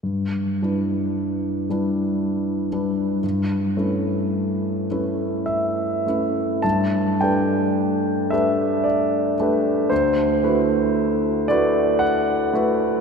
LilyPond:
\new Staff \with { instrumentName = "Grand piano" } { \time 3/4 \key g \major \tempo 4 = 57 << { r2. | r2 e''4 | a''8 g''4 e''8 d''4 | c''4. d''8 fis''4 | } \\ { g,8 <g d' e' b'>4 <g d' e' b'>4 <g d' e' b'>8 | g,8 <a cis' e' b'>4 <a cis' e' b'>4 <a cis' e' b'>8 | g,8 <a d' g' b'>4 <a d' g' b'>4 <a d' g' b'>8 | d,8 <a e' fis' b'>4 <a e' fis' b'>4 <a e' fis' b'>8 | } >> }